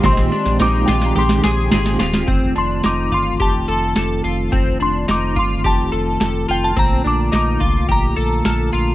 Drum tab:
RD |x-x-x-x-x-x-x-x-|----------------|----------------|----------------|
HH |----------------|x-x-x-x-x-x-x-x-|x-x-x-x-x-x-x-x-|x-x-x-x-x-x-x-x-|
SD |oo-oo-oo-oo-oooo|----o-------o---|----o-------o---|----o-------o---|
BD |o---------------|o-----o-o-------|o-----o-o-------|o-----o-o-------|